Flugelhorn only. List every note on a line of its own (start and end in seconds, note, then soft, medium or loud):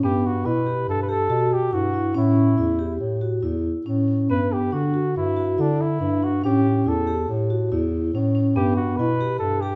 0.04 0.28 G4 medium
0.26 0.47 F#4 medium
0.46 0.88 B4 medium
0.89 1.02 A4 medium
1.02 1.11 B4 medium
1.09 1.55 A4 medium
1.53 1.75 G4 medium
1.73 2.16 F#4 medium
2.17 2.98 E4 medium
4.30 4.54 B4 medium
4.53 4.75 G4 medium
4.73 5.16 F#4 medium
5.17 5.62 E4 medium
5.61 5.83 D4 medium
5.81 6.25 E4 medium
6.24 6.44 F#4 medium
6.45 6.90 G4 medium
6.88 7.30 A4 medium
8.56 8.76 G4 medium
8.77 8.98 F#4 medium
8.97 9.38 B4 medium
9.39 9.62 A4 medium
9.61 9.75 G4 medium